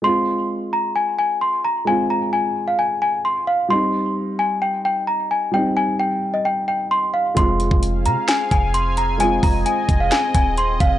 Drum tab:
HH |----------------|----------------|----------------|----------------|
SD |----------------|----------------|----------------|----------------|
BD |----------------|----------------|----------------|----------------|

HH |x-x-x-x-x-x-x-x-|x-o-x-x-x-x-x-x-|
SD |--------o-------|--------o-------|
BD |o--o------o-----|--o---o---o---o-|